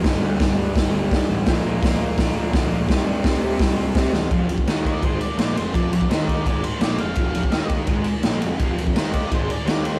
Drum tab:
RD |----------------|----------------|----------------|x-x-x-x-x-x-x-x-|
HH |o---o---o---o---|o---o---o---o---|o---o---o---o---|----------------|
SD |o---o---o---o---|o---o---o---o---|o---o---o---o-o-|----o-------o---|
BD |o---o---o---o---|o---o---o---o---|o---o---o---o---|o--o--o-o-------|

RD |x-x-x-x-x-x-x-x-|x-x-x-x-x-x-x-x-|x-x-x-x-x-x-x-x-|
HH |----------------|----------------|----------------|
SD |----o-------o---|----o-------o---|----o-------o---|
BD |o--o--o-o-------|o--o--o-o-------|o--o--o-o-------|